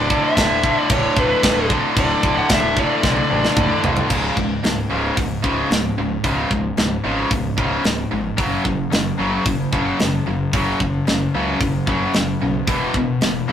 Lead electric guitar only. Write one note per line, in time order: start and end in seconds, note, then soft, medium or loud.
0.00 0.21 D5 loud
0.24 0.78 E5 loud
0.78 0.91 D5 loud
0.92 1.18 C#5 loud
1.19 1.68 B4 medium
1.99 2.39 D5 medium
2.38 2.50 F#5 loud
2.53 2.79 E5 medium
2.79 3.81 D5 medium